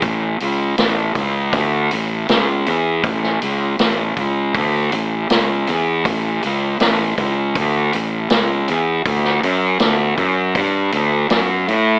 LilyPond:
<<
  \new Staff \with { instrumentName = "Fingered electric bass" } { \clef bass \time 4/4 \key a \mixolydian \tempo 4 = 80 a,,8 cis,8 a,,8 cis,8 d,8 a,,8 cis,8 e,8 | a,,8 cis,8 a,,8 cis,8 d,8 a,,8 cis,8 e,8 | a,,8 cis,8 a,,8 cis,8 d,8 a,,8 cis,8 e,8 | d,8 fis,8 d,8 fis,8 g,8 d,8 fis,8 a,8 | }
  \new DrumStaff \with { instrumentName = "Drums" } \drummode { \time 4/4 <hho bd>8 hho8 <hho sn>8 <hho bd>8 <hho bd>8 hho8 <hho sn>8 hho8 | <hho bd>16 sn16 hho8 <hho sn>8 <hho bd>8 <hho bd>8 hho8 <hho sn>8 hho8 | <hho bd>8 hho8 <hho sn>8 <hho bd>8 <hho bd>8 hho8 <hho sn>8 hho8 | <hho bd>16 sn16 hho8 <hho sn>8 <hho bd>8 <hho bd>8 hho8 <hho sn>8 hho8 | }
>>